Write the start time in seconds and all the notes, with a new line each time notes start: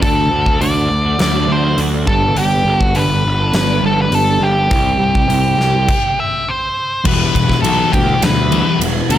0.02 D2 D3 A3 D4 F#4 A4, kick, open hi-hat
0.30 D2 D3 A3 D4 F#4
0.46 kick
0.60 D2 D3 A3 D4 F#4 D5, open hi-hat
0.76 A3 D4 F#4
0.90 D2, muted clean electric guitar stroke
1.05 A3 D4 F#4
1.19 D2 D5, snare, open hi-hat
1.34 A3 D4 F#4
1.48 D2 D3 A3 D4 F#4 C5
1.64 A3 D4 F#4
1.77 D2 D3 A3 D4 F#4, open hi-hat
1.93 A3 D4 F#4
2.07 G1 G3 B3 D4 A4, kick
2.11 A4
2.22 B3 D4 A4
2.36 G1 G3 B3 D4 G4 A4, open hi-hat
2.65 G1 G3 B3 D4 A4
2.81 F#4, kick
2.95 G1 G3 B3 D4 A4 B4, open hi-hat
3.09 B3 D4 A4
3.24 G1, muted clean electric guitar stroke
3.39 B3 D4 A4
3.54 G1 B4, snare, open hi-hat
3.68 B3 D4 A4
3.82 G1 G3 B3 D4 A4
3.86 A4
3.97 B3 D4 A4
4.02 B4
4.11 G1 G3 B3 D4 A4, open hi-hat
4.26 B3 D4 A4
4.40 G1
4.44 G4
4.55 B3 D4 A4
4.69 C2 C3 G3 C4 E4 G4, kick, open hi-hat
4.98 C2 G3 C4 E4 G4
5.15 kick
5.28 C2 C3 G3 C4 E4 G4, open hi-hat
5.43 C4 E4 G4
5.58 C2, muted clean electric guitar stroke, snare
5.72 C4 E4 G4
5.88 kick, crash
6.20 E5
6.49 C5
7.04 E1 E2 B2 E3 G3 E4 F#4 B4, kick, crash
7.18 E3 G3 E4 F#4
7.34 E1 E2 B2 E3 G3 E4 F#4, kick, ride
7.48 E3 G3 E4 F#4, kick, snare
7.62 B1 E2 B2 E3 G3 E4 F#4 A4, ride
7.93 D2 E2 B2 G4, kick, ride
8.06 E3 G3 E4 F#4
8.21 D2 E2 B2 B4, snare, ride
8.36 E3 G3 E4 F#4
8.51 E2 B2 E3 G3 E4 F#4, ride
8.66 E3 G3 E4 F#4
8.80 E1 E2 B2 E3 G3 E4 F#4, ride
9.09 D2 E2 B2 E3 G3 E4 B4, ride
9.13 F#4